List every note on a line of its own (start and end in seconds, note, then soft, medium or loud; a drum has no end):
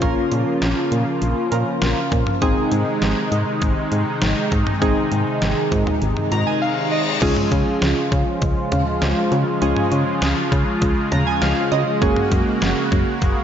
0.00 0.14 A#1 loud
0.00 2.38 C#3 medium
0.00 2.38 F3 medium
0.00 2.38 A#3 medium
0.00 1.49 C#4 medium
0.00 2.38 F4 medium
0.00 1.49 F4 medium
0.00 1.49 A#4 medium
0.00 kick loud
0.00 closed hi-hat medium
0.32 0.44 A#2 loud
0.32 closed hi-hat medium
0.62 0.74 A#1 loud
0.62 snare loud
0.62 closed hi-hat medium
0.92 1.04 A#2 loud
0.92 closed hi-hat medium
1.22 1.34 A#1 loud
1.22 closed hi-hat medium
1.52 1.64 A#2 medium
1.52 2.42 C#4 medium
1.52 2.42 F4 medium
1.52 2.42 A#4 medium
1.52 closed hi-hat medium
1.82 1.94 A#1 loud
1.82 snare loud
1.82 closed hi-hat medium
2.12 2.24 A#2 loud
2.12 kick medium
2.12 closed hi-hat medium
2.27 mid tom medium
2.42 2.54 G#1 loud
2.42 7.18 C3 medium
2.42 7.18 D#3 medium
2.42 7.18 G#3 medium
2.42 4.78 C4 medium
2.42 4.78 D#4 medium
2.42 7.18 D#4 medium
2.42 4.78 G#4 medium
2.42 kick loud
2.42 closed hi-hat medium
2.72 2.84 G#2 loud
2.72 closed hi-hat medium
3.02 3.14 G#1 loud
3.02 snare loud
3.02 closed hi-hat medium
3.32 3.44 G#2 loud
3.32 closed hi-hat medium
3.62 3.74 G#1 loud
3.62 kick loud
3.62 closed hi-hat medium
3.92 4.04 G#2 loud
3.92 closed hi-hat medium
4.22 4.34 G#1 loud
4.22 snare loud
4.22 closed hi-hat medium
4.52 4.64 G#2 loud
4.52 kick medium
4.52 closed hi-hat medium
4.67 mid tom medium
4.82 4.94 G#1 loud
4.82 7.18 C4 medium
4.82 7.18 D#4 medium
4.82 7.18 G#4 medium
4.82 kick loud
4.82 closed hi-hat medium
5.12 5.24 G#2 loud
5.12 closed hi-hat medium
5.42 5.54 G#1 loud
5.42 snare loud
5.42 closed hi-hat medium
5.72 5.84 G#2 loud
5.72 kick loud
5.72 closed hi-hat medium
5.72 cowbell medium
5.87 mid tom medium
6.02 6.14 G#1 loud
6.02 closed hi-hat medium
6.02 reverse cymbal medium
6.17 mid tom medium
6.32 6.44 G#2 loud
6.32 6.46 A#5 medium
6.32 closed hi-hat medium
6.32 cowbell medium
6.47 6.61 G#5 medium
6.62 6.90 F5 medium
6.92 7.20 D#5 medium
7.22 7.34 C#2 loud
7.22 13.44 C#3 medium
7.22 11.98 F3 medium
7.22 13.44 G#3 medium
7.22 9.58 G#3 medium
7.22 9.58 C#4 medium
7.22 11.98 F4 medium
7.22 9.58 F4 medium
7.22 9.58 G#4 medium
7.22 kick loud
7.22 closed hi-hat medium
7.22 crash loud
7.37 mid tom medium
7.52 7.64 C#3 loud
7.52 kick medium
7.52 closed hi-hat medium
7.82 7.94 C#2 loud
7.82 snare loud
7.82 closed hi-hat medium
8.12 8.24 C#3 loud
8.12 kick loud
8.12 closed hi-hat medium
8.42 8.54 C#2 loud
8.42 kick loud
8.42 closed hi-hat medium
8.72 8.84 C#3 loud
8.72 closed hi-hat medium
8.72 mid tom loud
9.02 9.14 C#2 loud
9.02 snare loud
9.02 closed hi-hat medium
9.32 9.44 C#3 loud
9.32 closed hi-hat medium
9.32 cowbell medium
9.62 9.74 C#2 loud
9.62 11.98 G#3 medium
9.62 11.98 C#4 medium
9.62 11.98 F4 medium
9.62 11.98 G#4 medium
9.62 closed hi-hat medium
9.77 mid tom medium
9.92 10.04 C#3 loud
9.92 closed hi-hat medium
10.22 10.34 C#2 loud
10.22 snare loud
10.22 closed hi-hat medium
10.52 10.64 C#3 loud
10.52 kick loud
10.52 closed hi-hat medium
10.82 10.94 C#2 loud
10.82 kick loud
10.82 closed hi-hat medium
11.12 11.24 C#3 loud
11.12 11.26 A#5 medium
11.12 closed hi-hat medium
11.12 mid tom loud
11.27 11.41 G#5 medium
11.42 11.54 C#2 loud
11.42 11.70 F5 medium
11.42 snare loud
11.42 closed hi-hat medium
11.72 11.84 C#3 medium
11.72 12.00 D#5 medium
11.72 closed hi-hat medium
11.72 cowbell medium
12.02 12.14 F#1 loud
12.02 13.44 A#3 medium
12.02 13.44 C#4 medium
12.02 13.44 F#4 medium
12.02 13.44 G#4 medium
12.02 kick loud
12.02 closed hi-hat medium
12.16 mid tom medium
12.32 12.44 F#2 loud
12.32 kick medium
12.32 closed hi-hat medium
12.62 12.74 F#1 loud
12.62 snare loud
12.62 closed hi-hat medium
12.92 13.04 F#2 loud
12.92 kick loud
12.92 closed hi-hat medium
13.22 13.34 F#1 loud
13.22 kick loud
13.22 closed hi-hat medium